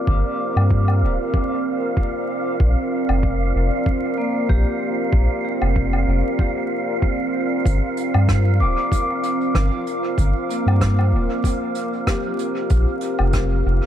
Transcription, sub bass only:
0.07 G1
0.56 G2
1.02 D1
2.60 A#1
3.09 F1
3.55 F1
4.49 A#1
5.13 A#1
5.62 F1
6.07 F1
7.65 G1
8.14 G2
8.60 D1
9.55 G1
10.18 G1
10.66 G2
11.12 D1
12.71 A#1
13.19 F1
13.65 F1

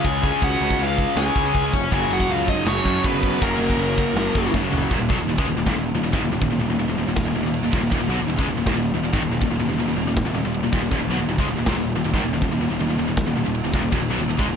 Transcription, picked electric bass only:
0.05 C#2
0.42 C#2
0.61 C#2
0.79 C#2
1.16 C#2
1.36 C#2
1.55 C#2
1.73 F1
1.92 F#1
2.09 F#1
2.28 C#2
2.65 F#1
2.85 F#2
3.05 F#1
3.42 F#1
3.58 F#1
3.77 F#1
4.14 F#1
4.35 F#1
4.54 F#1
4.71 F#1
4.91 D#1
4.98 D#1
5.09 B1
5.17 D#1
5.27 D#1
5.38 C#2
5.45 D#1
5.56 D#1
5.66 D#1
5.74 D#1
5.93 D#1
6.01 D#1
6.13 G#1
6.21 D#1
6.30 D#1
6.42 D#1
6.50 D#1
6.59 D#1
6.68 D#1
6.77 D#1
6.87 D#1
6.97 D#1
7.07 D#1
7.24 D#1
7.34 D#1
7.43 D#1
7.62 D#1
7.73 D#1
7.81 D#1
7.92 D#1
7.99 D#1
8.08 B1
8.17 D#1
8.27 D#1
8.39 C#2
8.46 D#1
8.55 D#1
8.66 D#1
8.73 D#1
8.92 D#1
9.02 D#1
9.13 G#1
9.21 D#1
9.30 D#1
9.42 D#1
9.49 D#1
9.59 D#1
9.68 D#1
9.77 D#1
9.86 D#1
9.96 D#1
10.05 D#1
10.23 D#1
10.33 D#1
10.42 D#1
10.62 D#1
10.73 D#1
10.81 D#1
10.92 D#1
11.00 D#1
11.09 B1
11.18 D#1
11.27 D#1
11.38 C#2
11.47 D#1
11.56 D#1
11.67 D#1
11.76 D#1
11.95 D#1
12.04 D#1
12.13 G#1
12.22 D#1
12.32 D#1
12.42 D#1
12.50 D#1
12.59 D#1
12.70 D#1
12.79 D#1
12.88 D#1
12.98 D#1
13.07 D#1
13.27 D#1
13.37 D#1
13.46 D#1
13.64 D#1
13.74 D#1
13.83 D#1
13.92 D#1
14.01 D#1
14.10 B1
14.19 D#1
14.28 D#1
14.39 C#2
14.46 D#1

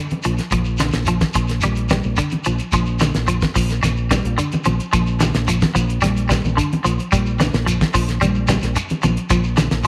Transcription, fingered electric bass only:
0.11 muted fingered electric bass stroke
0.26 A#1
0.53 A#1
0.94 A#1
1.35 A#1
1.63 A#1
2.05 A#1
2.34 muted fingered electric bass stroke
2.47 A#1
2.73 A#1
3.15 A#1
3.56 A#1
3.84 A#1
4.25 A#1
4.53 muted fingered electric bass stroke
4.66 A#1
4.94 A#1
5.35 A#1
5.76 A#1
6.03 A#1
6.44 A#1
6.72 muted fingered electric bass stroke
6.85 A#1
7.13 A#1
7.53 A#1
7.95 A#1
8.22 A#1
8.63 A#1
8.90 muted fingered electric bass stroke
9.04 A#1
9.30 A#1
9.72 A#1

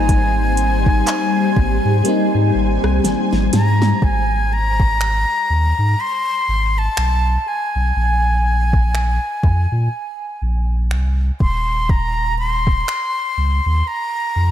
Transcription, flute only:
Already playing: G#5
3.54 A#5
4.04 G#5
4.53 A#5
6.00 C6
6.78 A5
7.48 G#5
11.41 C6
11.90 A#5
12.39 C6
13.87 A#5

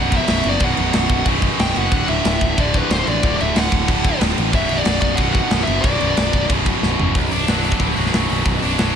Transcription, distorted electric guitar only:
Already playing: B1 F#2 B2
0.61 B1 F#2 B2
1.26 B1 F#2 B2
1.91 D2 A2 D3
2.56 D2 A2 D3
3.23 D2 A2 D3
3.88 D2 A2 D3
4.52 B1 F#2 B2
5.18 B1 F#2 B2
5.83 B1 F#2 B2
6.49 B1 F#2 B2
7.15 B1
7.32 D4
7.49 F#3
7.64 F#2
7.80 B2
7.97 F#3
8.12 F#2
8.29 B2
8.46 B1
8.62 D4
8.78 F#3

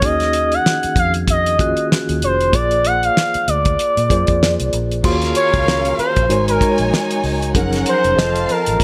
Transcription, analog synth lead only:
0.05 D#5
0.54 F#5
0.99 F5
1.30 D#5
2.24 C5
2.54 D5
2.86 F#5
3.04 F5
3.49 D5
5.36 C#5
5.99 C5
6.49 A#4
7.89 C5
8.51 A#4

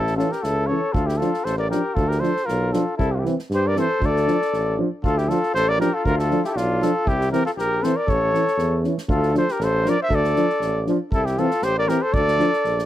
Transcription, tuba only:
Already playing: A1
0.44 C#2
0.94 D2
1.45 A1
1.96 D2
2.49 B1
2.99 C2
3.50 G2
4.00 D2
4.53 A1
5.04 D2
5.55 A1
6.05 D2
6.55 B1
7.06 C2
7.57 A#1
8.08 A1
8.58 E2
9.09 D2
9.59 A1
10.09 D2
10.60 A1
11.11 C2
11.62 A1
12.13 D2
12.65 A#1

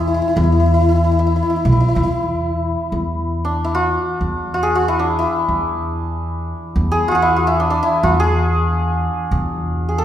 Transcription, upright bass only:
Already playing: E2
0.36 E2
1.65 B1
1.96 E2
2.92 E2
4.21 E2
5.48 E2
6.76 E2
8.03 E2
9.31 E2

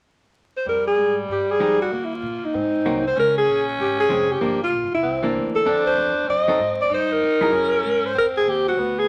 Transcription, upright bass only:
0.66 F2
0.97 G#2
1.28 G2
1.60 F2
1.92 D#2
2.23 A#2
2.43 muted upright bass stroke
2.54 G#2
2.85 C2
3.16 C#2
3.47 A#1
3.79 G#1
4.10 F1
4.40 G1
4.72 A#1
4.82 G1
4.92 F1
5.02 C2
5.34 D2
5.65 F2
5.96 E2
6.28 F#2
6.59 G#2
6.90 G2
7.21 F2
7.52 F#2
7.84 G#2
8.15 F2
8.46 D#2
8.77 D2

